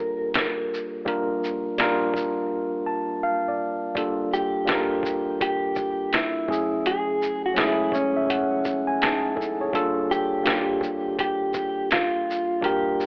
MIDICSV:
0, 0, Header, 1, 4, 480
1, 0, Start_track
1, 0, Key_signature, -2, "minor"
1, 0, Tempo, 722892
1, 705, Time_signature, 4, 2, 24, 8
1, 8672, End_track
2, 0, Start_track
2, 0, Title_t, "Clean electric guitar"
2, 0, Program_c, 0, 27
2, 0, Note_on_c, 0, 70, 108
2, 2122, Note_off_c, 0, 70, 0
2, 2878, Note_on_c, 0, 67, 78
2, 3592, Note_off_c, 0, 67, 0
2, 3600, Note_on_c, 0, 67, 90
2, 4080, Note_on_c, 0, 64, 85
2, 4086, Note_off_c, 0, 67, 0
2, 4560, Note_on_c, 0, 68, 98
2, 4566, Note_off_c, 0, 64, 0
2, 4948, Note_off_c, 0, 68, 0
2, 4951, Note_on_c, 0, 66, 95
2, 5039, Note_off_c, 0, 66, 0
2, 5039, Note_on_c, 0, 64, 81
2, 5278, Note_off_c, 0, 64, 0
2, 5280, Note_on_c, 0, 61, 83
2, 6206, Note_off_c, 0, 61, 0
2, 6714, Note_on_c, 0, 67, 102
2, 7432, Note_off_c, 0, 67, 0
2, 7440, Note_on_c, 0, 67, 107
2, 7919, Note_off_c, 0, 67, 0
2, 7922, Note_on_c, 0, 65, 90
2, 8399, Note_off_c, 0, 65, 0
2, 8402, Note_on_c, 0, 67, 90
2, 8672, Note_off_c, 0, 67, 0
2, 8672, End_track
3, 0, Start_track
3, 0, Title_t, "Tine electric piano"
3, 0, Program_c, 1, 4
3, 0, Control_c, 1, 64, 127
3, 0, Note_on_c, 1, 55, 75
3, 0, Note_on_c, 1, 58, 66
3, 0, Note_on_c, 1, 62, 54
3, 0, Note_on_c, 1, 65, 60
3, 0, Note_on_c, 1, 67, 73
3, 0, Note_on_c, 1, 68, 53
3, 0, Note_on_c, 1, 69, 99
3, 0, Note_on_c, 1, 73, 63
3, 699, Note_off_c, 1, 55, 0
3, 699, Note_on_c, 1, 55, 81
3, 703, Note_off_c, 1, 58, 0
3, 703, Note_on_c, 1, 58, 70
3, 709, Note_off_c, 1, 62, 0
3, 709, Note_on_c, 1, 62, 60
3, 713, Note_off_c, 1, 65, 0
3, 713, Note_on_c, 1, 65, 63
3, 718, Note_on_c, 1, 70, 83
3, 1084, Note_off_c, 1, 55, 0
3, 1087, Note_off_c, 1, 58, 0
3, 1089, Note_off_c, 1, 62, 0
3, 1091, Note_off_c, 1, 65, 0
3, 1094, Note_off_c, 1, 70, 0
3, 1185, Note_on_c, 1, 55, 89
3, 1189, Note_on_c, 1, 58, 74
3, 1194, Note_on_c, 1, 62, 76
3, 1199, Note_on_c, 1, 65, 83
3, 1202, Note_on_c, 1, 70, 95
3, 1892, Note_off_c, 1, 55, 0
3, 1894, Note_off_c, 1, 58, 0
3, 1897, Note_off_c, 1, 62, 0
3, 1899, Note_off_c, 1, 65, 0
3, 1901, Note_off_c, 1, 70, 0
3, 1902, Note_on_c, 1, 81, 71
3, 2126, Note_off_c, 1, 81, 0
3, 2147, Note_on_c, 1, 77, 77
3, 2289, Note_off_c, 1, 77, 0
3, 2313, Note_on_c, 1, 74, 65
3, 2610, Note_off_c, 1, 74, 0
3, 2621, Note_on_c, 1, 55, 81
3, 2627, Note_on_c, 1, 58, 70
3, 2631, Note_on_c, 1, 62, 72
3, 2632, Control_c, 1, 64, 0
3, 2633, Note_off_c, 1, 69, 0
3, 2633, Note_off_c, 1, 73, 0
3, 2635, Note_off_c, 1, 68, 0
3, 2635, Note_on_c, 1, 65, 69
3, 2637, Note_off_c, 1, 67, 0
3, 2640, Note_on_c, 1, 69, 86
3, 2765, Control_c, 1, 64, 127
3, 3005, Note_off_c, 1, 55, 0
3, 3008, Note_off_c, 1, 58, 0
3, 3011, Note_off_c, 1, 62, 0
3, 3012, Note_off_c, 1, 65, 0
3, 3015, Note_off_c, 1, 69, 0
3, 3088, Note_on_c, 1, 55, 65
3, 3094, Note_on_c, 1, 58, 65
3, 3097, Note_on_c, 1, 62, 68
3, 3103, Note_on_c, 1, 65, 64
3, 3108, Note_on_c, 1, 69, 59
3, 3151, Note_on_c, 1, 70, 82
3, 3161, Note_off_c, 1, 69, 0
3, 3804, Note_off_c, 1, 55, 0
3, 3807, Note_off_c, 1, 58, 0
3, 3809, Note_off_c, 1, 62, 0
3, 3811, Note_off_c, 1, 65, 0
3, 3835, Note_off_c, 1, 70, 0
3, 4301, Note_on_c, 1, 54, 71
3, 4305, Note_on_c, 1, 57, 63
3, 4309, Note_on_c, 1, 61, 73
3, 4313, Control_c, 1, 64, 0
3, 4314, Note_on_c, 1, 64, 66
3, 4319, Note_on_c, 1, 68, 84
3, 4439, Control_c, 1, 64, 127
3, 4905, Note_off_c, 1, 54, 0
3, 4907, Note_off_c, 1, 57, 0
3, 4909, Note_off_c, 1, 61, 0
3, 4912, Note_off_c, 1, 64, 0
3, 4915, Note_off_c, 1, 68, 0
3, 5006, Note_on_c, 1, 54, 79
3, 5012, Note_on_c, 1, 56, 59
3, 5015, Note_on_c, 1, 61, 73
3, 5021, Note_on_c, 1, 64, 74
3, 5026, Note_on_c, 1, 68, 86
3, 5056, Note_on_c, 1, 57, 79
3, 5073, Note_off_c, 1, 56, 0
3, 5268, Note_on_c, 1, 73, 79
3, 5409, Note_off_c, 1, 73, 0
3, 5421, Note_on_c, 1, 76, 66
3, 5500, Note_off_c, 1, 76, 0
3, 5510, Note_on_c, 1, 78, 70
3, 5723, Note_off_c, 1, 54, 0
3, 5728, Note_off_c, 1, 61, 0
3, 5731, Note_off_c, 1, 64, 0
3, 5733, Note_off_c, 1, 68, 0
3, 5748, Note_off_c, 1, 57, 0
3, 5874, Note_off_c, 1, 78, 0
3, 5892, Note_on_c, 1, 80, 71
3, 5975, Note_off_c, 1, 80, 0
3, 5991, Note_on_c, 1, 68, 62
3, 5992, Note_on_c, 1, 81, 82
3, 5995, Note_on_c, 1, 63, 53
3, 6214, Note_on_c, 1, 69, 68
3, 6216, Note_off_c, 1, 68, 0
3, 6218, Note_off_c, 1, 63, 0
3, 6219, Note_on_c, 1, 64, 57
3, 6365, Note_off_c, 1, 69, 0
3, 6368, Note_off_c, 1, 64, 0
3, 6381, Note_on_c, 1, 73, 62
3, 6385, Note_on_c, 1, 68, 49
3, 6441, Note_off_c, 1, 81, 0
3, 6457, Note_on_c, 1, 55, 85
3, 6462, Note_on_c, 1, 58, 68
3, 6466, Note_on_c, 1, 62, 86
3, 6471, Note_on_c, 1, 65, 82
3, 6473, Control_c, 1, 64, 0
3, 6476, Note_on_c, 1, 69, 103
3, 6589, Control_c, 1, 64, 127
3, 6608, Note_off_c, 1, 73, 0
3, 6610, Note_off_c, 1, 68, 0
3, 6843, Note_off_c, 1, 55, 0
3, 6846, Note_off_c, 1, 58, 0
3, 6848, Note_off_c, 1, 62, 0
3, 6850, Note_off_c, 1, 65, 0
3, 6853, Note_off_c, 1, 69, 0
3, 6924, Note_on_c, 1, 55, 65
3, 6929, Note_on_c, 1, 58, 71
3, 6933, Note_on_c, 1, 62, 61
3, 6938, Note_on_c, 1, 65, 64
3, 6943, Note_on_c, 1, 67, 79
3, 7642, Note_off_c, 1, 55, 0
3, 7645, Note_off_c, 1, 58, 0
3, 7646, Note_off_c, 1, 62, 0
3, 7649, Note_off_c, 1, 65, 0
3, 7652, Note_off_c, 1, 67, 0
3, 8371, Note_on_c, 1, 55, 77
3, 8376, Note_on_c, 1, 58, 61
3, 8382, Note_on_c, 1, 62, 65
3, 8384, Note_on_c, 1, 65, 68
3, 8390, Note_on_c, 1, 70, 91
3, 8672, Note_off_c, 1, 55, 0
3, 8672, Note_off_c, 1, 58, 0
3, 8672, Note_off_c, 1, 62, 0
3, 8672, Note_off_c, 1, 65, 0
3, 8672, Note_off_c, 1, 70, 0
3, 8672, End_track
4, 0, Start_track
4, 0, Title_t, "Drums"
4, 227, Note_on_c, 9, 42, 70
4, 235, Note_on_c, 9, 38, 118
4, 294, Note_off_c, 9, 42, 0
4, 302, Note_off_c, 9, 38, 0
4, 492, Note_on_c, 9, 82, 46
4, 558, Note_off_c, 9, 82, 0
4, 704, Note_on_c, 9, 36, 105
4, 715, Note_on_c, 9, 42, 73
4, 770, Note_off_c, 9, 36, 0
4, 781, Note_off_c, 9, 42, 0
4, 957, Note_on_c, 9, 82, 46
4, 1023, Note_off_c, 9, 82, 0
4, 1184, Note_on_c, 9, 42, 71
4, 1194, Note_on_c, 9, 38, 123
4, 1251, Note_off_c, 9, 42, 0
4, 1260, Note_off_c, 9, 38, 0
4, 1419, Note_on_c, 9, 36, 110
4, 1436, Note_on_c, 9, 82, 50
4, 1486, Note_off_c, 9, 36, 0
4, 1502, Note_off_c, 9, 82, 0
4, 2624, Note_on_c, 9, 36, 108
4, 2634, Note_on_c, 9, 42, 65
4, 2690, Note_off_c, 9, 36, 0
4, 2700, Note_off_c, 9, 42, 0
4, 2877, Note_on_c, 9, 82, 40
4, 2943, Note_off_c, 9, 82, 0
4, 3104, Note_on_c, 9, 42, 67
4, 3113, Note_on_c, 9, 38, 118
4, 3170, Note_off_c, 9, 42, 0
4, 3180, Note_off_c, 9, 38, 0
4, 3339, Note_on_c, 9, 36, 102
4, 3356, Note_on_c, 9, 82, 53
4, 3406, Note_off_c, 9, 36, 0
4, 3422, Note_off_c, 9, 82, 0
4, 3590, Note_on_c, 9, 36, 93
4, 3594, Note_on_c, 9, 42, 77
4, 3657, Note_off_c, 9, 36, 0
4, 3660, Note_off_c, 9, 42, 0
4, 3821, Note_on_c, 9, 82, 49
4, 3826, Note_on_c, 9, 36, 86
4, 3888, Note_off_c, 9, 82, 0
4, 3893, Note_off_c, 9, 36, 0
4, 4067, Note_on_c, 9, 42, 71
4, 4076, Note_on_c, 9, 38, 121
4, 4134, Note_off_c, 9, 42, 0
4, 4142, Note_off_c, 9, 38, 0
4, 4305, Note_on_c, 9, 36, 109
4, 4332, Note_on_c, 9, 82, 42
4, 4371, Note_off_c, 9, 36, 0
4, 4399, Note_off_c, 9, 82, 0
4, 4553, Note_on_c, 9, 42, 67
4, 4620, Note_off_c, 9, 42, 0
4, 4795, Note_on_c, 9, 82, 49
4, 4861, Note_off_c, 9, 82, 0
4, 5022, Note_on_c, 9, 42, 68
4, 5032, Note_on_c, 9, 38, 113
4, 5088, Note_off_c, 9, 42, 0
4, 5098, Note_off_c, 9, 38, 0
4, 5258, Note_on_c, 9, 36, 108
4, 5274, Note_on_c, 9, 82, 56
4, 5325, Note_off_c, 9, 36, 0
4, 5341, Note_off_c, 9, 82, 0
4, 5509, Note_on_c, 9, 36, 87
4, 5511, Note_on_c, 9, 42, 73
4, 5575, Note_off_c, 9, 36, 0
4, 5578, Note_off_c, 9, 42, 0
4, 5741, Note_on_c, 9, 82, 48
4, 5746, Note_on_c, 9, 36, 89
4, 5808, Note_off_c, 9, 82, 0
4, 5812, Note_off_c, 9, 36, 0
4, 5988, Note_on_c, 9, 42, 66
4, 5996, Note_on_c, 9, 38, 115
4, 6054, Note_off_c, 9, 42, 0
4, 6062, Note_off_c, 9, 38, 0
4, 6220, Note_on_c, 9, 36, 87
4, 6252, Note_on_c, 9, 82, 42
4, 6287, Note_off_c, 9, 36, 0
4, 6318, Note_off_c, 9, 82, 0
4, 6463, Note_on_c, 9, 36, 106
4, 6474, Note_on_c, 9, 42, 70
4, 6529, Note_off_c, 9, 36, 0
4, 6540, Note_off_c, 9, 42, 0
4, 6715, Note_on_c, 9, 82, 41
4, 6781, Note_off_c, 9, 82, 0
4, 6943, Note_on_c, 9, 42, 68
4, 6952, Note_on_c, 9, 38, 116
4, 7009, Note_off_c, 9, 42, 0
4, 7019, Note_off_c, 9, 38, 0
4, 7177, Note_on_c, 9, 36, 105
4, 7194, Note_on_c, 9, 82, 53
4, 7244, Note_off_c, 9, 36, 0
4, 7260, Note_off_c, 9, 82, 0
4, 7428, Note_on_c, 9, 36, 97
4, 7431, Note_on_c, 9, 42, 78
4, 7495, Note_off_c, 9, 36, 0
4, 7497, Note_off_c, 9, 42, 0
4, 7660, Note_on_c, 9, 82, 46
4, 7665, Note_on_c, 9, 36, 83
4, 7726, Note_off_c, 9, 82, 0
4, 7731, Note_off_c, 9, 36, 0
4, 7906, Note_on_c, 9, 42, 64
4, 7914, Note_on_c, 9, 38, 119
4, 7973, Note_off_c, 9, 42, 0
4, 7981, Note_off_c, 9, 38, 0
4, 8170, Note_on_c, 9, 82, 46
4, 8236, Note_off_c, 9, 82, 0
4, 8382, Note_on_c, 9, 36, 106
4, 8393, Note_on_c, 9, 42, 66
4, 8449, Note_off_c, 9, 36, 0
4, 8459, Note_off_c, 9, 42, 0
4, 8634, Note_on_c, 9, 82, 46
4, 8672, Note_off_c, 9, 82, 0
4, 8672, End_track
0, 0, End_of_file